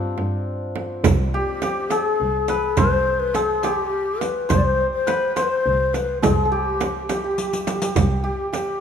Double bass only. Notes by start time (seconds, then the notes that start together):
Already playing: G2
0.17 G2
1.03 C2
2.20 C2
2.77 C2
4.50 C2
5.66 C2
6.23 C2
7.95 C2